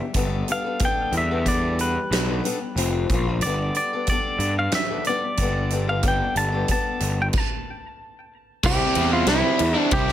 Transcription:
0.00 0.13 G3 medium
0.00 0.51 E5 medium
0.14 0.42 G1 loud
0.14 0.48 G3 medium
0.14 0.49 B3 loud
0.14 0.48 D4 medium
0.14 0.49 A4 loud
0.14 kick medium
0.14 closed hi-hat medium
0.48 0.79 G3 medium
0.48 0.65 B3 medium
0.48 0.65 D4 medium
0.48 0.63 A4 medium
0.48 closed hi-hat medium
0.52 0.83 F5 medium
0.64 0.81 B3 medium
0.64 0.80 D4 medium
0.64 0.81 A4 medium
0.79 1.45 G3 medium
0.79 1.31 B3 loud
0.79 1.32 D4 medium
0.79 1.30 A4 medium
0.79 kick loud
0.79 closed hi-hat medium
0.85 1.16 G5 medium
1.12 1.96 E2 medium
1.12 closed hi-hat medium
1.17 1.46 E5 medium
1.31 1.46 B3 medium
1.31 1.46 D4 medium
1.31 1.48 A4 medium
1.46 2.28 G3 loud
1.46 1.95 B3 medium
1.46 1.95 D4 medium
1.46 1.94 A4 loud
1.46 1.80 D5 medium
1.46 kick medium
1.46 closed hi-hat medium
1.79 3.07 B4 medium
1.79 closed hi-hat medium
1.95 muted steel-string acoustic guitar stroke soft
2.11 2.39 B1 medium
2.11 snare loud
2.11 closed hi-hat loud
2.28 2.45 B3 medium
2.28 2.44 D4 medium
2.28 2.45 A4 medium
2.44 2.75 G3 medium
2.44 2.60 B3 medium
2.44 2.60 D4 medium
2.44 2.59 A4 medium
2.44 closed hi-hat medium
2.60 muted steel-string acoustic guitar stroke medium
2.76 3.04 F1 loud
2.76 3.08 F3 medium
2.76 3.08 C4 medium
2.76 3.08 F4 loud
2.76 closed hi-hat medium
3.09 3.42 A#1 medium
3.09 3.41 A#2 medium
3.09 3.29 F3 medium
3.09 3.28 A#3 medium
3.09 kick loud
3.09 closed hi-hat medium
3.13 3.27 F4 loud
3.28 3.43 F3 medium
3.28 3.42 A#3 medium
3.28 3.42 F4 medium
3.40 3.69 G1 medium
3.40 3.75 D5 medium
3.40 closed hi-hat medium
3.45 4.08 G3 medium
3.45 3.94 B3 medium
3.45 3.92 D4 medium
3.45 3.92 A4 medium
3.75 4.08 D5 medium
3.75 closed hi-hat medium
3.93 4.09 B3 medium
3.93 4.11 D4 medium
3.93 4.11 A4 medium
4.07 4.90 G3 medium
4.07 4.54 D5 medium
4.07 kick medium
4.07 closed hi-hat medium
4.11 4.57 B3 medium
4.11 4.58 D4 medium
4.11 4.57 A4 loud
4.39 4.67 G2 medium
4.39 closed hi-hat medium
4.58 4.75 F5 medium
4.58 muted steel-string acoustic guitar stroke soft
4.71 5.07 E5 medium
4.71 snare loud
4.71 closed hi-hat medium
4.90 5.07 B3 medium
4.90 5.08 D4 medium
4.90 5.09 A4 medium
5.04 5.39 G3 medium
5.04 5.89 D5 medium
5.04 closed hi-hat medium
5.08 5.24 B3 medium
5.08 5.24 D4 medium
5.08 5.23 A4 medium
5.24 muted steel-string acoustic guitar stroke soft
5.37 6.21 G1 medium
5.37 5.71 G3 loud
5.37 kick medium
5.37 closed hi-hat medium
5.41 5.72 B3 medium
5.41 5.72 D4 loud
5.41 5.73 A4 loud
5.70 6.02 G3 medium
5.70 5.89 B3 medium
5.70 5.88 D4 medium
5.70 closed hi-hat medium
5.74 5.86 A4 medium
5.87 6.03 B3 medium
5.87 6.05 D4 medium
5.87 6.05 A4 medium
5.87 6.05 F5 medium
6.03 6.69 G3 loud
6.03 6.54 B3 medium
6.03 6.53 D4 loud
6.03 6.51 A4 loud
6.03 kick loud
6.03 closed hi-hat medium
6.08 6.37 G5 medium
6.36 6.63 G1 medium
6.36 6.67 A5 loud
6.36 closed hi-hat medium
6.52 6.70 B3 medium
6.52 6.71 D4 medium
6.52 6.71 A4 medium
6.68 7.32 G3 medium
6.68 7.20 B3 loud
6.68 7.19 D4 loud
6.68 7.20 A5 medium
6.68 kick medium
6.68 closed hi-hat medium
6.73 7.19 A4 loud
7.00 7.29 G1 medium
7.00 closed hi-hat medium
7.20 7.27 G5 medium
7.20 muted steel-string acoustic guitar stroke soft
7.33 kick loud
7.33 crash medium
7.38 8.33 A5 loud
8.63 8.77 C2 loud
8.63 8.93 C3 loud
8.63 8.94 G3 loud
8.63 8.96 C4 loud
8.63 8.97 E4 loud
8.63 9.13 G4 loud
8.63 kick loud
8.63 crash loud
8.94 9.23 E2 medium
8.94 9.26 C3 medium
8.94 9.26 G3 medium
8.94 9.28 C4 medium
8.94 9.28 E4 medium
8.94 ride medium
9.13 9.29 F4 loud
9.26 9.41 C2 loud
9.26 9.59 C3 loud
9.26 9.59 G3 loud
9.26 9.61 C4 loud
9.26 9.79 E4 loud
9.26 9.59 E4 loud
9.26 snare loud
9.26 ride medium
9.59 9.74 E2 medium
9.59 muted overdriven electric guitar stroke soft
9.59 ride medium
9.74 10.08 G3 medium
9.74 10.09 C4 medium
9.74 10.06 E4 medium
9.79 9.95 D4 loud
9.91 10.12 C2 loud
9.91 10.12 G4 loud
9.91 kick loud
9.91 ride loud
10.07 10.12 C4 medium
10.07 10.12 E4 medium
10.07 snare soft

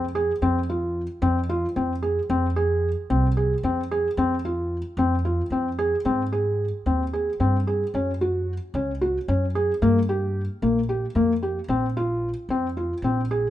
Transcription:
0.00 0.30 F2 medium
0.15 0.31 G#4 medium
0.42 1.06 F2 medium
0.42 0.58 C4 medium
0.70 1.01 F4 medium
1.22 1.65 F2 medium
1.22 1.38 C4 medium
1.49 1.65 F4 medium
1.76 2.19 F2 medium
1.76 1.92 C4 medium
2.03 2.18 G#4 medium
2.30 2.93 F2 medium
2.30 2.46 C4 medium
2.56 2.88 G#4 medium
3.10 3.53 C2 medium
3.10 3.26 C4 medium
3.37 3.53 G#4 medium
3.63 4.06 F2 medium
3.63 3.80 C4 medium
3.91 4.07 G#4 medium
4.17 4.81 F2 medium
4.17 4.34 C4 medium
4.45 4.76 F4 medium
4.97 5.40 F2 medium
4.97 5.14 C4 medium
5.25 5.41 F4 medium
5.50 5.94 F2 medium
5.50 5.68 C4 medium
5.79 5.94 G#4 medium
6.05 6.69 G#2 medium
6.05 6.21 C4 medium
6.32 6.64 G#4 medium
6.86 7.29 D#2 medium
6.86 7.02 C4 medium
7.13 7.29 G#4 medium
7.40 7.82 G2 medium
7.40 7.56 C4 medium
7.67 7.83 G#4 medium
7.94 8.58 F#2 medium
7.94 8.10 C#4 medium
8.21 8.53 F#4 medium
8.74 9.17 C#2 medium
8.74 8.90 C#4 medium
9.01 9.17 F#4 medium
9.28 9.71 F#2 medium
9.28 9.44 C#4 medium
9.55 9.71 G#4 medium
9.82 10.46 G2 medium
9.82 9.98 A#3 medium
10.09 10.40 G4 medium
10.62 11.05 A#1 medium
10.62 10.78 A#3 medium
10.89 11.05 G4 medium
11.15 11.58 F2 medium
11.15 11.32 A#3 medium
11.43 11.58 G4 medium
11.68 12.33 A#1 medium
11.68 11.85 C4 medium
11.97 12.28 F4 medium
12.49 12.92 F2 medium
12.49 12.66 C4 medium
12.77 12.93 F4 medium
13.02 13.45 A#1 medium
13.02 13.20 C4 medium
13.31 13.47 G#4 medium

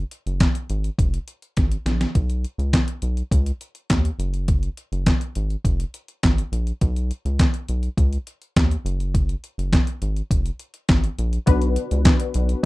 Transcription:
0.11 closed hi-hat medium
0.26 0.46 F#1 medium
0.26 closed hi-hat soft
0.40 kick loud
0.40 snare loud
0.40 clap medium
0.40 closed hi-hat medium
0.55 closed hi-hat medium
0.70 0.90 G#1 loud
0.70 closed hi-hat medium
0.84 closed hi-hat soft
0.98 1.19 F1 medium
0.98 kick loud
0.98 closed hi-hat medium
1.14 closed hi-hat soft
1.28 closed hi-hat medium
1.42 closed hi-hat soft
1.57 1.77 G#1 medium
1.57 kick loud
1.57 snare soft
1.57 closed hi-hat medium
1.72 closed hi-hat medium
1.86 2.06 A#1 medium
1.86 snare medium
1.86 closed hi-hat medium
2.01 snare medium
2.01 closed hi-hat medium
2.15 2.46 B1 medium
2.15 kick loud
2.15 closed hi-hat medium
2.30 closed hi-hat soft
2.44 closed hi-hat medium
2.58 2.79 C#2 medium
2.58 closed hi-hat soft
2.73 kick loud
2.73 snare loud
2.73 clap medium
2.73 closed hi-hat medium
2.88 closed hi-hat medium
3.02 3.23 B1 medium
3.02 closed hi-hat medium
3.17 closed hi-hat soft
3.31 3.52 C#2 loud
3.31 kick loud
3.31 closed hi-hat loud
3.46 closed hi-hat medium
3.61 closed hi-hat medium
3.75 closed hi-hat soft
3.90 4.10 D#2 medium
3.90 kick medium
3.90 snare medium
3.90 clap medium
3.90 closed hi-hat medium
4.05 closed hi-hat medium
4.19 4.69 F#1 medium
4.19 closed hi-hat medium
4.34 closed hi-hat soft
4.48 kick loud
4.48 closed hi-hat medium
4.63 closed hi-hat soft
4.77 closed hi-hat medium
4.92 5.12 F#1 medium
4.92 closed hi-hat soft
5.06 kick loud
5.06 snare loud
5.06 clap medium
5.06 closed hi-hat medium
5.21 closed hi-hat medium
5.35 5.56 G#1 medium
5.35 closed hi-hat medium
5.50 closed hi-hat soft
5.64 5.85 F1 loud
5.64 kick medium
5.64 closed hi-hat loud
5.80 closed hi-hat medium
5.94 closed hi-hat medium
6.08 closed hi-hat soft
6.23 6.43 G#1 medium
6.23 kick loud
6.23 snare loud
6.23 clap medium
6.23 closed hi-hat medium
6.38 closed hi-hat medium
6.52 6.72 A#1 medium
6.52 closed hi-hat medium
6.67 closed hi-hat soft
6.81 7.12 B1 loud
6.81 kick loud
6.81 closed hi-hat medium
6.96 closed hi-hat soft
7.11 closed hi-hat medium
7.25 7.45 C#2 medium
7.25 closed hi-hat soft
7.39 kick loud
7.39 snare loud
7.39 clap medium
7.39 closed hi-hat loud
7.54 closed hi-hat medium
7.68 7.89 B1 medium
7.68 closed hi-hat medium
7.83 closed hi-hat soft
7.97 8.18 C#2 loud
7.97 kick loud
7.97 closed hi-hat medium
8.13 closed hi-hat soft
8.27 closed hi-hat medium
8.42 closed hi-hat soft
8.56 8.76 D#2 medium
8.56 kick loud
8.56 snare loud
8.56 clap medium
8.56 closed hi-hat medium
8.71 closed hi-hat soft
8.85 9.35 F#1 loud
8.85 closed hi-hat medium
9.00 closed hi-hat soft
9.15 kick loud
9.15 closed hi-hat medium
9.29 closed hi-hat soft
9.44 closed hi-hat medium
9.58 9.78 F#1 medium
9.58 closed hi-hat soft
9.73 kick loud
9.73 snare loud
9.73 clap medium
9.73 closed hi-hat medium
9.87 closed hi-hat medium
10.02 10.22 G#1 medium
10.02 closed hi-hat medium
10.16 closed hi-hat soft
10.31 10.51 F1 medium
10.31 kick loud
10.31 closed hi-hat loud
10.46 closed hi-hat soft
10.60 closed hi-hat medium
10.74 closed hi-hat soft
10.89 11.09 G#1 loud
10.89 kick loud
10.89 snare loud
10.89 clap medium
10.89 closed hi-hat medium
11.04 closed hi-hat medium
11.19 11.39 A#1 medium
11.19 closed hi-hat medium
11.33 closed hi-hat soft
11.46 11.78 B1 loud
11.46 12.61 B3 medium
11.46 12.61 D4 medium
11.46 12.62 F#4 medium
11.46 12.62 B4 medium
11.46 kick loud
11.46 closed hi-hat medium
11.62 closed hi-hat medium
11.76 closed hi-hat medium
11.91 12.11 C#2 medium
11.91 closed hi-hat medium
12.05 kick loud
12.05 snare loud
12.05 clap loud
12.05 closed hi-hat medium
12.20 closed hi-hat medium
12.34 12.55 B1 loud
12.34 closed hi-hat medium
12.49 closed hi-hat soft

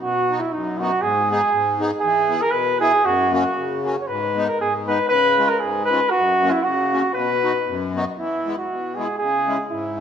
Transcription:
0.01 0.41 B2 medium
0.01 0.41 F#4 medium
0.30 0.40 B3 medium
0.30 0.41 D#4 medium
0.30 0.41 F#4 medium
0.40 0.53 E4 medium
0.52 0.92 F#2 medium
0.52 0.80 D#4 medium
0.79 0.91 B3 medium
0.79 0.91 D#4 medium
0.79 1.03 F#4 loud
0.83 0.92 F#4 medium
1.02 1.41 G#2 medium
1.02 1.30 G#4 loud
1.30 1.41 B3 medium
1.30 1.41 D#4 medium
1.30 1.77 G#4 loud
1.30 1.42 G#4 medium
1.53 1.91 G#2 medium
1.79 1.90 B3 medium
1.79 1.91 D#4 medium
1.79 1.91 G#4 medium
2.00 2.42 E3 medium
2.00 2.43 G#4 loud
2.29 2.40 B3 medium
2.29 2.41 E4 medium
2.29 2.41 G#4 medium
2.41 2.52 A#4 loud
2.51 2.92 B2 medium
2.51 2.80 B4 loud
2.80 2.92 B3 medium
2.80 2.92 E4 medium
2.80 3.07 G#4 loud
2.80 2.92 G#4 medium
3.05 3.44 F#2 medium
3.05 3.33 F#4 loud
3.32 3.43 A#3 medium
3.32 3.44 C#4 medium
3.32 3.44 F#4 medium
3.32 3.82 F#4 medium
3.58 3.97 C#3 medium
3.84 3.95 A#3 medium
3.84 3.95 C#4 medium
3.84 3.96 F#4 medium
4.01 4.09 C#5 medium
4.07 4.48 G#2 medium
4.07 4.47 B4 loud
4.35 4.46 G#3 medium
4.35 4.47 B3 medium
4.35 4.48 D#4 medium
4.47 4.59 A#4 medium
4.61 4.99 G#2 medium
4.61 4.73 G#4 medium
4.87 4.98 G#3 medium
4.87 4.98 B3 medium
4.87 4.99 D#4 medium
4.87 5.09 B4 loud
5.09 5.48 C#3 medium
5.09 5.50 B4 loud
5.37 5.48 G#3 medium
5.37 5.49 C#4 medium
5.37 5.49 F4 medium
5.49 5.61 A#4 loud
5.60 6.01 G#2 medium
5.60 5.85 G#4 medium
5.85 6.12 B4 loud
5.91 6.00 G#3 medium
5.91 6.00 C#4 medium
5.91 6.01 F4 medium
6.10 6.52 F#4 loud
6.14 6.52 F#2 medium
6.43 6.51 A#3 medium
6.43 6.52 C#4 medium
6.43 6.52 F#4 medium
6.51 6.64 E4 medium
6.63 7.03 C#3 medium
6.63 7.13 F#4 loud
6.93 7.02 A#3 medium
6.93 7.02 C#4 medium
6.93 7.02 F#4 medium
7.14 7.53 B2 medium
7.14 7.89 B4 loud
7.43 7.53 B3 medium
7.43 7.52 D#4 medium
7.43 7.53 F#4 medium
7.68 8.05 F#2 medium
7.95 8.04 B3 medium
7.95 8.05 D#4 medium
7.95 8.05 F#4 medium
8.17 8.56 E3 medium
8.17 8.53 E4 medium
8.45 8.55 G#3 medium
8.45 8.56 B3 medium
8.45 8.56 E4 medium
8.58 8.97 F#4 medium
8.69 9.07 B2 medium
8.95 9.06 G#3 medium
8.95 9.07 B3 medium
8.95 9.18 G#4 medium
8.99 9.08 E4 medium
9.18 9.58 C#3 medium
9.18 9.65 G#4 loud
9.47 9.56 G#3 medium
9.47 9.57 C#4 medium
9.47 9.57 E4 medium
9.71 10.00 G#2 medium
9.71 10.00 E4 medium
9.97 10.00 G#3 medium

